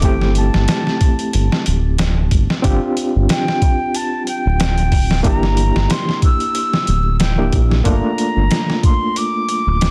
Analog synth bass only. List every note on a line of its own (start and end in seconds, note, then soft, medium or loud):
0.03 0.50 G1 medium
0.55 0.67 G1 medium
1.34 1.50 G1 medium
1.67 2.29 D1 medium
2.32 2.47 G1 medium
2.64 2.80 G1 loud
3.16 3.28 G1 medium
4.45 5.22 D1 medium
5.25 5.72 G1 medium
5.75 5.88 G1 medium
6.88 7.50 D1 medium
7.53 7.82 A#1 medium
7.86 8.01 G1 loud
8.36 8.49 G1 medium
9.67 9.91 D1 medium